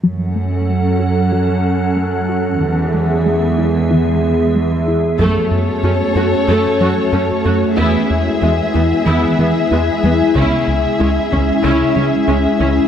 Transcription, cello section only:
X:1
M:4/4
L:1/8
Q:1/4=93
K:F#m
V:1 name="Cello section" clef=bass
F,,8 | E,,6- E,, z | F,, z F,, F,, F,, F,, F,, F,, | E,, z E,, E,, E,, E,, E,, E,, |
C,, z C,, C,, C,, C,, C,, C,, |]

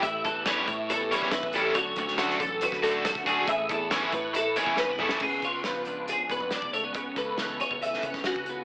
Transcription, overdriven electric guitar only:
X:1
M:4/4
L:1/8
Q:1/4=139
K:A
V:1 name="Overdriven electric guitar"
z2 [E,=G,CE] z2 [E,G,CE] z [E,G,CE] | z2 [D,A,DF] z2 [D,A,DF] z [D,A,DF] | z2 [E,A,CE] z2 [E,A,CE] z [E,A,CE] | z8 |
z8 |]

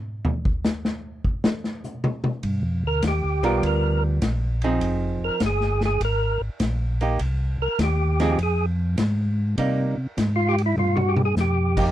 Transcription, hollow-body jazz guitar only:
X:1
M:4/4
L:1/8
Q:"Swing" 1/4=101
K:Cm
V:1 name="Hollow-body jazz guitar"
z8 | z3 [G,=B,F^A]3 z [F,CE_A]- | [F,CEA]2 z4 z [B,EG] | z3 [F,CEA] z4 |
[G,B,E] z6 [B,EG] |]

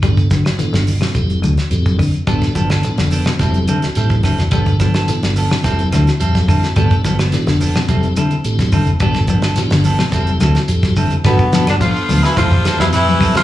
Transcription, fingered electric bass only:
X:1
M:4/4
L:1/16
Q:1/4=107
K:Gmix
V:1 name="Fingered electric bass" clef=bass
G,,,4- G,,, G,,,2 z F,,,2 D,, z F,,4 | G,,, z G,,,2 z F,,,2 z F,,,2 z2 A,,,2 z F,,, | G,,,4- G,,, G,,,2 z F,,,2 D,, z F,,4 | G,,, z G,,,2 z F,,,2 z F,,,2 z2 A,,,2 z F,,, |
G,,,4- G,,, G,,,2 z F,,,2 D,, z F,,4 | G,,3 G,,2 z D,, z F,,2 z F,,3 C,,2 |]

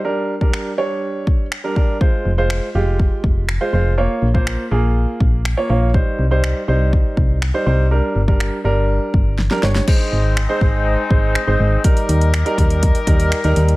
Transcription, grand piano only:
X:1
M:4/4
L:1/16
Q:1/4=122
K:Ab
V:1 name="Grand piano"
[G,=DB]2 z [G,DB]2 z [G,D_d]4- [G,=D_d] z2 [G,=DB] [G,DB]2 | [A,Fc]2 z [A,Fc]2 z [A,FG]4- [A,FG] z2 [A,Fc] [A,Fc]2 | [B,Fd]2 z [B,Fc]2 z [B,FA]4- [B,FA] z2 [B,Fd] [B,Fd]2 | [G,Ec]2 z [G,Ec]2 z [G,Ec]4- [G,Ec] z2 [G,Ec] [G,Ec]2 |
[G,=DB]2 z [G,DB]2 z [G,DB]4- [G,DB] z2 [G,DB] [G,D_d]2 | [A,Ec]4 z [A,Ec] [A,Ec]3 z [A,Ec]2 z [A,Ec]2 z | [G,EB]4 z [G,EB] [G,E]3 z [G,EB]2 z [G,EB]2 z |]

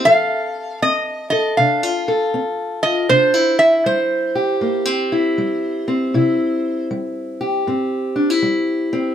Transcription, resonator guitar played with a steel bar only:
X:1
M:4/4
L:1/8
Q:"Swing" 1/4=79
K:C
V:1 name="Resonator guitar played with a steel bar"
f2 _e e f2 z e | c e c6- | c2 z6 |]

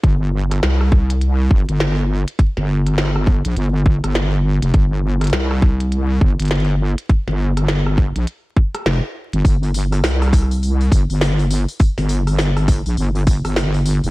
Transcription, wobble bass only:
X:1
M:4/4
L:1/16
Q:"Swing 16ths" 1/4=102
K:Gm
V:1 name="Wobble bass" clef=bass
G,,,4 C,,6 G,,, G,,,4 z | z G,,,6 B,,, G,,,3 G,,,4 F,,, | G,,,4 C,,6 G,,, G,,,4 z | z G,,,6 B,,, z4 F,,, z2 G,,, |
G,,,4 C,,6 G,,, G,,,4 z | z G,,,6 B,,, G,,,3 G,,,4 F,,, |]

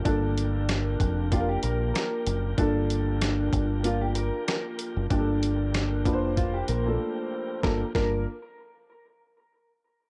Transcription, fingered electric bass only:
X:1
M:4/4
L:1/16
Q:"Swing 16ths" 1/4=95
K:Gm
V:1 name="Fingered electric bass" clef=bass
G,,,6 F,,,4 B,,,2 z2 ^F,,,2 | G,,,6 G,,,4- G,,, z4 ^F,,, | G,,,6 F,,,4 B,,,2 z4 | G,,, z G,,,2 z12 |]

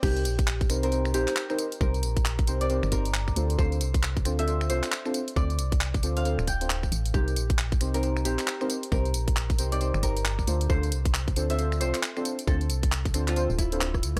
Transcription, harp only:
X:1
M:4/4
L:1/16
Q:"Swing 16ths" 1/4=135
K:Dphr
V:1 name="Harp"
G z6 B z2 G z4 z | B z6 d z2 B z4 z | c z6 =e z2 c z4 z | d z6 f z2 g z4 z |
G z6 B z2 G z4 z | B z6 d z2 B z4 z | c z6 =e z2 c z4 z | A z6 F z2 =E z4 z |]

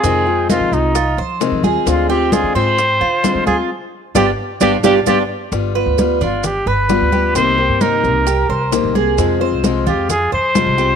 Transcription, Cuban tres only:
X:1
M:4/4
L:1/8
Q:1/4=131
K:Gphr
V:1 name="Cuban tres"
C2 E2 F c2 A- | A C F C2 F2 F | z2 [DFG] z [DFG] [DFG] [DFG] z | z =B2 D2 B2 G |
C2 E2 G c2 A- | A c2 F2 c2 G |]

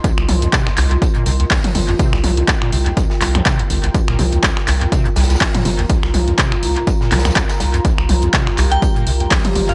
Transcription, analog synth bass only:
X:1
M:4/4
L:1/16
Q:"Swing 16ths" 1/4=123
K:Cm
V:1 name="Analog synth bass" clef=bass
z C,, C,,2 z2 C,,2 z2 C,,2 z2 G,,,2 | z C,, C,,2 z2 C,,2 z2 C,,2 z2 G,,,2 | z C,, C,,2 z2 C,,2 z2 C,,2 z2 G,,,2 | z C,, C,,2 z2 C,,2 z2 C,,2 z2 C,,2 |
z C,, C,,2 z2 C,,2 z2 C,,2 z2 G,,,2 |]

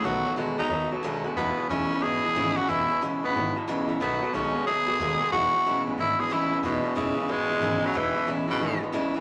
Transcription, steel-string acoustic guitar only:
X:1
M:4/4
L:1/8
Q:"Swing" 1/4=182
K:E
V:1 name="Steel-string acoustic guitar"
[B,,D,A,B,F] [A,B,F] [B,,D,A,B,F] [A,B,F] [D,A,B,F] [A,B,F] [B,,D,A,B,F] [A,B,F] | [E,,B,,E,G,B,E] [E,G,B,E] [E,,B,,E,G,B,E] [E,G,B,E] [E,G,B,E] [E,G,B,E] [E,,B,,E,G,B,E] [E,G,B,E] | [E,,B,,E,G,B,E] [E,G,B,E] [E,,B,,E,G,B,E] [E,G,B,E] [E,G,B,E] [E,G,B,E] [E,,B,,E,G,B,E] [E,G,B,E] | [B,,D,A,B,F] [A,B,F] [B,,D,A,B,F] [A,B,F] [D,A,B,F] [A,B,F] [B,,D,A,B,F] [A,B,F] |
[E,,B,,E,G,B,E] [E,G,B,E] [E,,B,,E,G,B,E] [E,G,B,E] [E,G,B,E] [E,G,B,E] [E,,B,,E,G,B,E] [E,G,B,E] | [E,,B,,E,G,B,E] [E,G,B,E] [E,,B,,E,G,B,E] [E,G,B,E] [E,G,B,E] [E,G,B,E] [E,,B,,E,G,B,E] [E,G,B,E] | [E,,B,,E,G,B,E] [E,G,B,E] [E,,B,,E,G,B,E] [E,G,B,E] [E,G,B,E] [E,G,B,E] [E,,B,,E,G,B,E] [E,G,B,E] |]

